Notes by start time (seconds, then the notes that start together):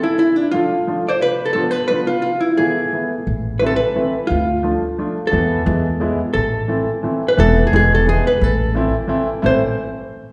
0.03 E4
0.19 E4
0.36 D4
0.51 F3 A3 D4 F4
0.87 F3 A3 D4 F4
1.09 C5 D5
1.22 B4
1.45 A4
1.53 F3 B3 D4 F4 A4
1.71 B4
1.88 F3 B3 D4 F4 B4
2.07 F4
2.22 F4
2.40 E4
2.57 E3 A3 B3 E4 G#4
2.92 E3 A3 B3 E4
3.27 A1
3.59 E3 A3 C4 E4 B4
3.66 A4
3.76 B4
3.95 E3 A3 C4 E4
4.27 D2 F4
4.63 F3 A3 D4 F4
4.99 F3 A3 D4 F4
5.27 E3 A3 A4
5.32 E2 B3 E4
5.66 E2 E3 G#3 B3 E4
6.00 E3 G#3 B3 E4
6.34 A1 A4
6.68 E3 A3 C4 E4
7.03 E3 A3 C4 E4
7.28 B4
7.37 E1 E3 A3 B3 E4 A4
7.67 G#4
7.73 E1 E3 G#3 B3 E4 G#4
7.95 A4
8.07 E3 G#3 B3 E4 G#4
8.27 B4
8.41 A1 A4
8.75 E3 A3 C4 E4
9.07 E3 A3 C4 E4
9.42 A1 E3 A3 C4 E4 C5